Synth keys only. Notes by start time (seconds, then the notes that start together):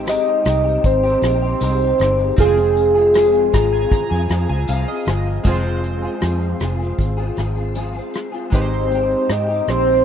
Already playing: G#3 C4 D#4 G4 C5
2.36 C4 F4
2.41 G#4
3.54 A#5
3.73 G#5
3.92 A#5
4.12 G#5
4.49 G#5
4.69 F5
4.88 D#5
5.44 G#3 C4 F4
5.49 C5
8.50 G#3 D#4 G4
8.55 B4
8.62 C5